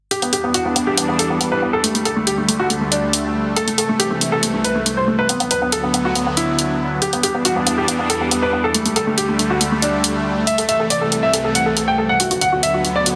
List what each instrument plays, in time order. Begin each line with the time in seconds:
0.11 supersaw synth E2 E3 G3 D4, grand piano G4, closed hi-hat
0.22 grand piano B3, closed hi-hat
0.33 grand piano G4, closed hi-hat
0.44 grand piano B3
0.54 grand piano F#4, closed hi-hat
0.65 grand piano B3
0.76 grand piano B3, closed hi-hat
0.87 grand piano G4
0.97 grand piano B3, closed hi-hat
1.09 grand piano B3
1.19 grand piano A4, closed hi-hat
1.30 grand piano B3
1.41 grand piano B3, closed hi-hat
1.52 grand piano B4
1.62 grand piano B3
1.73 grand piano A4
1.84 supersaw synth D2 D3 A3, grand piano A3, closed hi-hat
1.95 grand piano A3, closed hi-hat
2.05 grand piano A4, closed hi-hat
2.16 grand piano A3
2.27 grand piano G4, closed hi-hat
2.38 grand piano A3
2.48 grand piano A3, closed hi-hat
2.59 grand piano F#4
2.70 grand piano A3, closed hi-hat
2.81 grand piano A3
2.92 grand piano D4, closed hi-hat
3.13 closed hi-hat
3.56 supersaw synth C2 C3 E3, grand piano A4, closed hi-hat
3.67 grand piano A3, closed hi-hat
3.78 grand piano A4, closed hi-hat
3.89 grand piano A3
3.99 grand piano G4, closed hi-hat
4.11 grand piano A3
4.21 grand piano A3, closed hi-hat
4.32 grand piano A4
4.43 grand piano A3, closed hi-hat
4.54 grand piano A3
4.64 grand piano B4, closed hi-hat
4.75 grand piano A3
4.86 grand piano A3, closed hi-hat
4.97 grand piano C5
5.08 grand piano A3
5.19 grand piano B4
5.29 supersaw synth D2 D3 F#3 B3, grand piano B3, closed hi-hat
5.40 grand piano B3, closed hi-hat
5.51 grand piano B4, closed hi-hat
5.62 grand piano B3
5.72 grand piano A4, closed hi-hat
5.83 grand piano B3
5.94 grand piano B3, closed hi-hat
6.05 grand piano F#4
6.15 grand piano B3, closed hi-hat
6.27 grand piano B3
6.37 grand piano E4, closed hi-hat
6.59 closed hi-hat
7.02 supersaw synth E2 E3 G3 D4, grand piano G4, closed hi-hat
7.13 grand piano B3, closed hi-hat
7.23 grand piano G4, closed hi-hat
7.35 grand piano B3
7.45 grand piano F#4, closed hi-hat
7.56 grand piano B3
7.67 grand piano B3, closed hi-hat
7.78 grand piano G4
7.88 grand piano B3, closed hi-hat
7.99 grand piano B3
8.10 grand piano A4, closed hi-hat
8.21 grand piano B3
8.31 grand piano B3, closed hi-hat
8.42 grand piano B4
8.53 grand piano B3
8.64 grand piano A4
8.74 supersaw synth D2 D3 G3 A3, grand piano A3, closed hi-hat
8.86 grand piano A3, closed hi-hat
8.96 grand piano A4, closed hi-hat
9.07 grand piano A3
9.17 grand piano G4, closed hi-hat
9.29 grand piano A3
9.39 grand piano A3, closed hi-hat
9.50 grand piano F#4
9.61 grand piano A3, closed hi-hat
9.72 grand piano A3
9.82 grand piano D4, closed hi-hat
10.04 closed hi-hat
10.47 supersaw synth C2 C3 E3, grand piano E5, closed hi-hat
10.58 grand piano A4, closed hi-hat
10.69 grand piano E5, closed hi-hat
10.80 grand piano A4
10.90 grand piano D5, closed hi-hat
11.01 grand piano A4
11.12 grand piano A4, closed hi-hat
11.23 grand piano E5
11.33 grand piano A4, closed hi-hat
11.45 grand piano A4
11.55 grand piano F#5, closed hi-hat
11.66 grand piano A4
11.77 grand piano A4, closed hi-hat
11.88 grand piano G5
11.98 grand piano A4
12.09 grand piano F#5
12.20 supersaw synth D2 D3 F#3 B3, grand piano F#4, closed hi-hat
12.31 grand piano F#4, closed hi-hat
12.41 grand piano F#5, closed hi-hat
12.52 grand piano F#4
12.63 grand piano E5, closed hi-hat
12.74 grand piano F#4
12.85 grand piano F#4, closed hi-hat
12.96 grand piano D5
13.06 grand piano F#4, closed hi-hat